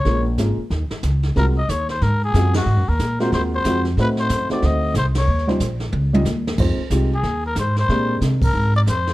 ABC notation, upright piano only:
X:1
M:4/4
L:1/8
Q:"Swing" 1/4=184
K:Ab
V:1 name="Upright piano"
[A,B,DFB] z [A,B,DFB] z4 z | [A,CF_GB] z4 z [A,CFGA] z | z3 [A,CF_GB]3 [A,CFGA] z | [=A,CE^Fc]3 [A,CEFc]3 z2 |
z [G,DEFc] z3 [G,DEFe] z2 | [A,CEFc] z [A,CEFG] z4 z | [A,C=DGB]4- [A,CDGB] z3 |]